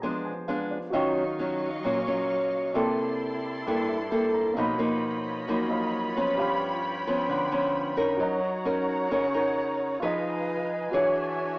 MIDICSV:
0, 0, Header, 1, 5, 480
1, 0, Start_track
1, 0, Key_signature, -6, "minor"
1, 0, Tempo, 454890
1, 982, Time_signature, 4, 2, 24, 8
1, 12228, End_track
2, 0, Start_track
2, 0, Title_t, "Grand piano"
2, 0, Program_c, 0, 0
2, 0, Control_c, 0, 64, 127
2, 0, Note_on_c, 0, 68, 54
2, 0, Note_on_c, 0, 71, 51
2, 0, Note_on_c, 0, 74, 49
2, 0, Note_on_c, 0, 82, 44
2, 19, Note_on_c, 0, 80, 54
2, 244, Note_off_c, 0, 80, 0
2, 261, Note_on_c, 0, 80, 47
2, 485, Note_off_c, 0, 80, 0
2, 505, Note_on_c, 0, 77, 48
2, 727, Note_off_c, 0, 77, 0
2, 731, Note_off_c, 0, 74, 0
2, 747, Note_on_c, 0, 74, 44
2, 932, Note_off_c, 0, 68, 0
2, 942, Note_off_c, 0, 71, 0
2, 953, Note_on_c, 0, 66, 52
2, 968, Note_off_c, 0, 74, 0
2, 977, Note_on_c, 0, 75, 47
2, 994, Control_c, 0, 64, 0
2, 996, Note_on_c, 0, 77, 47
2, 997, Note_off_c, 0, 82, 0
2, 1017, Note_on_c, 0, 85, 59
2, 1187, Control_c, 0, 64, 127
2, 2849, Note_off_c, 0, 66, 0
2, 2861, Note_off_c, 0, 75, 0
2, 2871, Note_off_c, 0, 77, 0
2, 2882, Note_off_c, 0, 85, 0
2, 2892, Note_on_c, 0, 74, 50
2, 2905, Note_on_c, 0, 76, 49
2, 2917, Control_c, 0, 64, 0
2, 2920, Note_on_c, 0, 81, 49
2, 2936, Note_on_c, 0, 84, 58
2, 3080, Control_c, 0, 64, 127
2, 4084, Note_off_c, 0, 76, 0
2, 4100, Note_on_c, 0, 76, 51
2, 4324, Note_off_c, 0, 76, 0
2, 4335, Note_on_c, 0, 79, 51
2, 4561, Note_off_c, 0, 79, 0
2, 4577, Note_on_c, 0, 82, 48
2, 4778, Note_off_c, 0, 74, 0
2, 4787, Note_on_c, 0, 58, 58
2, 4793, Note_off_c, 0, 81, 0
2, 4801, Note_off_c, 0, 84, 0
2, 4803, Note_off_c, 0, 82, 0
2, 4805, Note_on_c, 0, 73, 46
2, 4818, Note_on_c, 0, 75, 48
2, 4833, Note_on_c, 0, 77, 49
2, 4836, Control_c, 0, 64, 0
2, 4848, Note_on_c, 0, 83, 61
2, 5031, Control_c, 0, 64, 127
2, 5979, Note_off_c, 0, 58, 0
2, 5988, Note_off_c, 0, 73, 0
2, 5995, Note_off_c, 0, 75, 0
2, 5998, Note_on_c, 0, 58, 36
2, 6003, Note_off_c, 0, 77, 0
2, 6008, Note_on_c, 0, 73, 34
2, 6011, Note_off_c, 0, 83, 0
2, 6014, Note_on_c, 0, 75, 36
2, 6021, Note_on_c, 0, 77, 36
2, 6029, Note_on_c, 0, 83, 43
2, 6700, Note_on_c, 0, 67, 55
2, 6709, Note_off_c, 0, 73, 0
2, 6725, Note_on_c, 0, 73, 49
2, 6729, Note_off_c, 0, 58, 0
2, 6729, Note_off_c, 0, 77, 0
2, 6737, Note_off_c, 0, 75, 0
2, 6745, Note_off_c, 0, 83, 0
2, 6745, Note_on_c, 0, 77, 51
2, 6752, Control_c, 0, 64, 0
2, 6763, Note_on_c, 0, 83, 58
2, 6966, Control_c, 0, 64, 127
2, 8601, Note_off_c, 0, 67, 0
2, 8613, Note_off_c, 0, 73, 0
2, 8619, Note_on_c, 0, 66, 57
2, 8624, Note_off_c, 0, 77, 0
2, 8633, Note_off_c, 0, 83, 0
2, 8640, Note_on_c, 0, 73, 49
2, 8659, Note_on_c, 0, 75, 49
2, 8672, Control_c, 0, 64, 0
2, 8681, Note_on_c, 0, 82, 60
2, 8843, Control_c, 0, 64, 127
2, 10520, Note_off_c, 0, 66, 0
2, 10531, Note_off_c, 0, 73, 0
2, 10541, Note_off_c, 0, 75, 0
2, 10551, Note_on_c, 0, 65, 57
2, 10552, Note_off_c, 0, 82, 0
2, 10571, Note_on_c, 0, 71, 46
2, 10592, Control_c, 0, 64, 0
2, 10594, Note_on_c, 0, 75, 49
2, 10612, Note_on_c, 0, 80, 61
2, 10810, Control_c, 0, 64, 127
2, 11506, Note_off_c, 0, 65, 0
2, 11512, Note_on_c, 0, 66, 53
2, 11516, Note_off_c, 0, 71, 0
2, 11528, Note_off_c, 0, 75, 0
2, 11529, Note_on_c, 0, 73, 49
2, 11537, Note_off_c, 0, 80, 0
2, 11553, Control_c, 0, 64, 0
2, 11561, Note_on_c, 0, 76, 49
2, 11575, Note_on_c, 0, 80, 55
2, 11727, Control_c, 0, 64, 127
2, 12228, Note_off_c, 0, 66, 0
2, 12228, Note_off_c, 0, 73, 0
2, 12228, Note_off_c, 0, 76, 0
2, 12228, Note_off_c, 0, 80, 0
2, 12228, End_track
3, 0, Start_track
3, 0, Title_t, "String section"
3, 0, Program_c, 1, 48
3, 987, Note_on_c, 1, 75, 64
3, 989, Note_on_c, 1, 54, 66
3, 990, Note_on_c, 1, 85, 73
3, 991, Note_on_c, 1, 77, 64
3, 2886, Note_off_c, 1, 75, 0
3, 2887, Note_off_c, 1, 54, 0
3, 2887, Note_off_c, 1, 85, 0
3, 2888, Note_off_c, 1, 77, 0
3, 2899, Note_on_c, 1, 74, 63
3, 2900, Note_on_c, 1, 81, 66
3, 2900, Note_on_c, 1, 84, 81
3, 2906, Note_on_c, 1, 64, 72
3, 4801, Note_off_c, 1, 74, 0
3, 4801, Note_off_c, 1, 81, 0
3, 4802, Note_off_c, 1, 84, 0
3, 4805, Note_off_c, 1, 64, 0
3, 4825, Note_on_c, 1, 83, 85
3, 4827, Note_on_c, 1, 73, 68
3, 4827, Note_on_c, 1, 75, 69
3, 4828, Note_on_c, 1, 65, 67
3, 6724, Note_off_c, 1, 75, 0
3, 6747, Note_on_c, 1, 79, 60
3, 8623, Note_off_c, 1, 83, 0
3, 8624, Note_off_c, 1, 65, 0
3, 8624, Note_off_c, 1, 73, 0
3, 8644, Note_off_c, 1, 79, 0
3, 8664, Note_on_c, 1, 78, 65
3, 8666, Note_on_c, 1, 63, 66
3, 8666, Note_on_c, 1, 73, 64
3, 8666, Note_on_c, 1, 82, 73
3, 10562, Note_off_c, 1, 78, 0
3, 10563, Note_off_c, 1, 73, 0
3, 10563, Note_off_c, 1, 82, 0
3, 10593, Note_on_c, 1, 77, 61
3, 10595, Note_on_c, 1, 71, 60
3, 10595, Note_on_c, 1, 80, 80
3, 11514, Note_off_c, 1, 63, 0
3, 11537, Note_off_c, 1, 77, 0
3, 11538, Note_off_c, 1, 71, 0
3, 11557, Note_on_c, 1, 62, 66
3, 11561, Note_on_c, 1, 66, 68
3, 11562, Note_on_c, 1, 73, 64
3, 11563, Note_on_c, 1, 76, 60
3, 12228, Note_off_c, 1, 62, 0
3, 12228, Note_off_c, 1, 66, 0
3, 12228, Note_off_c, 1, 73, 0
3, 12228, Note_off_c, 1, 76, 0
3, 12228, Note_off_c, 1, 80, 0
3, 12228, End_track
4, 0, Start_track
4, 0, Title_t, "Flute section"
4, 0, Program_c, 2, 73
4, 8659, Note_on_c, 2, 73, 100
4, 10537, Note_off_c, 2, 73, 0
4, 10582, Note_on_c, 2, 75, 101
4, 11499, Note_off_c, 2, 75, 0
4, 11539, Note_on_c, 2, 73, 84
4, 12228, Note_off_c, 2, 73, 0
4, 12228, End_track
5, 0, Start_track
5, 0, Title_t, "Nylon-string guitar"
5, 0, Program_c, 3, 24
5, 32, Note_on_c, 3, 53, 61
5, 32, Note_on_c, 3, 56, 52
5, 38, Note_on_c, 3, 59, 56
5, 42, Note_on_c, 3, 62, 56
5, 336, Note_off_c, 3, 56, 0
5, 339, Note_off_c, 3, 59, 0
5, 341, Note_off_c, 3, 62, 0
5, 506, Note_on_c, 3, 56, 48
5, 511, Note_on_c, 3, 59, 54
5, 518, Note_on_c, 3, 62, 56
5, 814, Note_off_c, 3, 56, 0
5, 816, Note_off_c, 3, 59, 0
5, 818, Note_off_c, 3, 62, 0
5, 964, Note_off_c, 3, 53, 0
5, 983, Note_on_c, 3, 54, 47
5, 984, Note_on_c, 3, 51, 67
5, 988, Note_on_c, 3, 61, 56
5, 994, Note_on_c, 3, 65, 53
5, 1291, Note_off_c, 3, 54, 0
5, 1295, Note_off_c, 3, 61, 0
5, 1297, Note_off_c, 3, 65, 0
5, 1467, Note_on_c, 3, 54, 48
5, 1473, Note_on_c, 3, 61, 49
5, 1482, Note_on_c, 3, 65, 59
5, 1774, Note_off_c, 3, 54, 0
5, 1777, Note_off_c, 3, 61, 0
5, 1781, Note_off_c, 3, 65, 0
5, 1920, Note_off_c, 3, 51, 0
5, 1942, Note_on_c, 3, 46, 67
5, 1950, Note_on_c, 3, 54, 48
5, 1954, Note_on_c, 3, 61, 50
5, 1962, Note_on_c, 3, 65, 54
5, 2086, Note_off_c, 3, 61, 0
5, 2087, Note_off_c, 3, 54, 0
5, 2088, Note_off_c, 3, 65, 0
5, 2183, Note_on_c, 3, 54, 58
5, 2191, Note_on_c, 3, 61, 48
5, 2195, Note_on_c, 3, 65, 56
5, 2864, Note_off_c, 3, 54, 0
5, 2869, Note_off_c, 3, 61, 0
5, 2869, Note_off_c, 3, 65, 0
5, 2881, Note_off_c, 3, 46, 0
5, 2895, Note_on_c, 3, 48, 65
5, 2902, Note_on_c, 3, 58, 59
5, 2907, Note_on_c, 3, 64, 52
5, 2913, Note_on_c, 3, 69, 56
5, 3823, Note_off_c, 3, 58, 0
5, 3827, Note_off_c, 3, 64, 0
5, 3828, Note_off_c, 3, 69, 0
5, 3835, Note_off_c, 3, 48, 0
5, 3868, Note_on_c, 3, 43, 63
5, 3878, Note_on_c, 3, 58, 50
5, 3881, Note_on_c, 3, 64, 55
5, 3881, Note_on_c, 3, 69, 56
5, 4177, Note_off_c, 3, 64, 0
5, 4178, Note_off_c, 3, 58, 0
5, 4180, Note_off_c, 3, 69, 0
5, 4342, Note_on_c, 3, 58, 58
5, 4347, Note_on_c, 3, 69, 57
5, 4348, Note_on_c, 3, 64, 52
5, 4784, Note_off_c, 3, 58, 0
5, 4785, Note_off_c, 3, 64, 0
5, 4786, Note_off_c, 3, 69, 0
5, 4803, Note_off_c, 3, 43, 0
5, 4818, Note_on_c, 3, 53, 53
5, 4823, Note_on_c, 3, 47, 64
5, 4828, Note_on_c, 3, 58, 55
5, 4833, Note_on_c, 3, 63, 56
5, 5022, Note_off_c, 3, 53, 0
5, 5027, Note_off_c, 3, 58, 0
5, 5029, Note_off_c, 3, 63, 0
5, 5050, Note_on_c, 3, 53, 51
5, 5056, Note_on_c, 3, 58, 52
5, 5062, Note_on_c, 3, 63, 60
5, 5737, Note_off_c, 3, 53, 0
5, 5741, Note_off_c, 3, 58, 0
5, 5742, Note_off_c, 3, 63, 0
5, 5758, Note_off_c, 3, 47, 0
5, 5780, Note_on_c, 3, 42, 68
5, 5783, Note_on_c, 3, 53, 53
5, 5789, Note_on_c, 3, 58, 54
5, 5794, Note_on_c, 3, 63, 59
5, 6462, Note_off_c, 3, 53, 0
5, 6467, Note_off_c, 3, 58, 0
5, 6467, Note_off_c, 3, 63, 0
5, 6505, Note_on_c, 3, 53, 52
5, 6509, Note_on_c, 3, 59, 52
5, 6514, Note_on_c, 3, 61, 67
5, 6717, Note_off_c, 3, 42, 0
5, 6741, Note_on_c, 3, 43, 67
5, 7424, Note_off_c, 3, 53, 0
5, 7425, Note_off_c, 3, 59, 0
5, 7429, Note_off_c, 3, 61, 0
5, 7464, Note_on_c, 3, 53, 58
5, 7469, Note_on_c, 3, 59, 58
5, 7476, Note_on_c, 3, 61, 59
5, 7676, Note_off_c, 3, 43, 0
5, 7693, Note_on_c, 3, 50, 61
5, 7903, Note_off_c, 3, 53, 0
5, 7906, Note_off_c, 3, 59, 0
5, 7908, Note_off_c, 3, 61, 0
5, 7930, Note_on_c, 3, 53, 52
5, 7932, Note_on_c, 3, 59, 47
5, 7935, Note_on_c, 3, 61, 61
5, 8377, Note_off_c, 3, 53, 0
5, 8377, Note_off_c, 3, 59, 0
5, 8378, Note_off_c, 3, 61, 0
5, 8403, Note_on_c, 3, 61, 55
5, 8408, Note_on_c, 3, 63, 53
5, 8415, Note_on_c, 3, 70, 58
5, 8632, Note_off_c, 3, 50, 0
5, 8647, Note_on_c, 3, 54, 66
5, 8853, Note_off_c, 3, 61, 0
5, 8856, Note_off_c, 3, 63, 0
5, 8859, Note_off_c, 3, 70, 0
5, 9129, Note_on_c, 3, 61, 51
5, 9133, Note_on_c, 3, 63, 51
5, 9140, Note_on_c, 3, 70, 55
5, 9576, Note_off_c, 3, 61, 0
5, 9579, Note_off_c, 3, 63, 0
5, 9579, Note_off_c, 3, 70, 0
5, 9589, Note_off_c, 3, 54, 0
5, 9613, Note_on_c, 3, 49, 66
5, 9618, Note_on_c, 3, 61, 55
5, 9618, Note_on_c, 3, 63, 56
5, 9622, Note_on_c, 3, 70, 58
5, 9758, Note_off_c, 3, 61, 0
5, 9760, Note_off_c, 3, 63, 0
5, 9762, Note_off_c, 3, 70, 0
5, 9854, Note_on_c, 3, 61, 54
5, 9860, Note_on_c, 3, 63, 52
5, 9866, Note_on_c, 3, 70, 49
5, 10538, Note_off_c, 3, 61, 0
5, 10542, Note_off_c, 3, 63, 0
5, 10544, Note_off_c, 3, 70, 0
5, 10553, Note_off_c, 3, 49, 0
5, 10573, Note_on_c, 3, 53, 70
5, 10577, Note_on_c, 3, 63, 54
5, 10579, Note_on_c, 3, 68, 52
5, 10582, Note_on_c, 3, 71, 60
5, 11222, Note_off_c, 3, 63, 0
5, 11225, Note_off_c, 3, 68, 0
5, 11226, Note_off_c, 3, 71, 0
5, 11513, Note_off_c, 3, 53, 0
5, 11530, Note_on_c, 3, 52, 60
5, 11535, Note_on_c, 3, 62, 51
5, 11535, Note_on_c, 3, 68, 56
5, 11546, Note_on_c, 3, 73, 54
5, 12182, Note_off_c, 3, 68, 0
5, 12183, Note_off_c, 3, 62, 0
5, 12189, Note_off_c, 3, 73, 0
5, 12228, Note_off_c, 3, 52, 0
5, 12228, End_track
0, 0, End_of_file